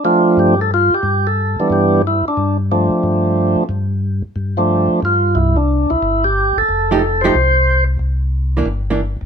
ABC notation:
X:1
M:4/4
L:1/8
Q:"Swing" 1/4=181
K:Gmix
V:1 name="Tonewheel organ"
F2 G A F G2 A- | A2 G2 E D2 z | z8 | z6 F2 |
[K:Cmix] E D2 E2 G2 A- | A2 A c4 z | z8 |]
V:2 name="Tonewheel organ"
[F,A,CD]3 z4 z | z [E,G,B,D]3 z4 | [F,A,CD]4- [F,A,CD] z3 | z3 [F,A,CD]3 z2 |
[K:Cmix] z8 | z8 | z8 |]
V:3 name="Hollow-body jazz guitar"
z8 | z8 | z8 | z8 |
[K:Cmix] z8 | z [F,A,_EG] z [F,A,EG] z4 | z3 [E,B,D] z [E,B,D] z2 |]
V:4 name="Tonewheel organ" clef=bass
z2 G,,3 z G,,2- | G,, z G,,3 z G,,2- | G,, z G,,3 z G,,2- | G,, z G,,3 z G,,2 |
[K:Cmix] C,,3 C,, G,,,3 G,,, | F,,,4 C,,4 | C,,4 G,,,3 G,,, |]